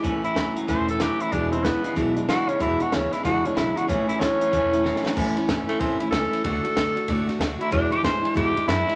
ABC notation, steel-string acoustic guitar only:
X:1
M:4/4
L:1/8
Q:"Swing" 1/4=188
K:A
V:1 name="Steel-string acoustic guitar"
[A,,E,A,CE] [A,CE] [E,A,CE] [A,CE] [A,,E,A,CE] [A,CE] [E,A,CE] [A,CE] | [E,,B,,E,G,DE] [E,G,DE] [E,G,DE] [E,G,DE] [E,,B,,E,G,DE] [E,G,DE] [E,G,DE] [E,G,DE] | [E,,B,,E,G,DE] [E,G,DE] [E,G,DE] [E,G,DE] [E,,B,,E,G,DE] [E,G,DE] [E,G,DE] [E,G,DE] | [A,,E,A,CE] [A,CE] [E,A,CE] [A,CE] [A,,E,A,CE] [A,CE] [E,A,CE] [A,CE] |
[A,,E,A,CE] [A,CE] [E,A,CE] [A,CE] [A,,E,A,CE] [A,CE] [E,A,CE] [A,CE] | [D,A,DF] [A,DF] [D,A,DF] [A,DF] [D,A,DF] [A,DF] [D,A,DF] [A,DF] | [E,,B,,E,G,DE] [E,G,DE] [E,G,DE] [E,G,DE] [E,,B,,E,G,DE] [E,G,DE] [E,G,DE] [E,G,DE] |]